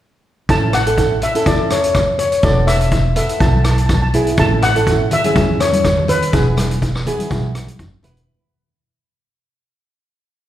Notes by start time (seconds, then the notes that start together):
0.49 A1 C#4 E4 A4 A5, kick, closed hi-hat
0.73 F#5, cross-stick, closed hi-hat
0.86 C#4 E4 A4, closed hi-hat
0.98 kick, closed hi-hat
1.22 E5, closed hi-hat
1.34 C#4 E4 A4, closed hi-hat
1.46 E2 D5, kick, closed hi-hat
1.70 C#5, cross-stick, closed hi-hat
1.84 closed hi-hat
1.95 kick, cross-stick, closed hi-hat
2.19 C#5, closed hi-hat
2.32 closed hi-hat
2.43 E1 B3 E4 A4 D5, kick, closed hi-hat
2.67 E5, cross-stick, closed hi-hat
2.81 closed hi-hat
2.91 kick, closed hi-hat
3.16 B3 E4 A4 E5, closed hi-hat
3.29 closed hi-hat
3.40 B1 A5, kick, closed hi-hat
3.48 A5
3.57 A5
3.64 A5, cross-stick, closed hi-hat
3.71 A5
3.78 closed hi-hat
3.86 A5, kick, cross-stick, closed hi-hat
3.94 A5
4.02 A5
4.14 B3 E4 G#4, closed hi-hat
4.27 closed hi-hat
4.37 A1 C#4 E4 A4 A5, kick, closed hi-hat
4.62 F#5, cross-stick, closed hi-hat
4.75 C#4 E4 A4, closed hi-hat
4.87 kick, closed hi-hat
5.11 E5, closed hi-hat, low conga
5.24 C#4 E4 G#4, closed hi-hat, high conga
5.35 E2, kick, closed hi-hat, high conga
5.60 C#5, cross-stick, closed hi-hat
5.73 closed hi-hat, high conga
5.85 kick, cross-stick, closed hi-hat
5.97 low conga
6.08 B4, closed hi-hat, low conga
6.22 closed hi-hat
6.32 E1 B3 E4 G#4, kick, closed hi-hat
6.57 cross-stick, closed hi-hat, high conga
6.71 closed hi-hat
6.82 kick, closed hi-hat
6.95 cross-stick
7.06 B3 E4 G#4, closed hi-hat, low conga
7.19 closed hi-hat, high conga
7.31 B1, kick, closed hi-hat
7.43 high conga
7.55 cross-stick, closed hi-hat
7.67 closed hi-hat, high conga
7.79 F#1, kick, closed hi-hat
8.03 E1 B3 E4 B4, closed hi-hat, low conga
8.17 closed hi-hat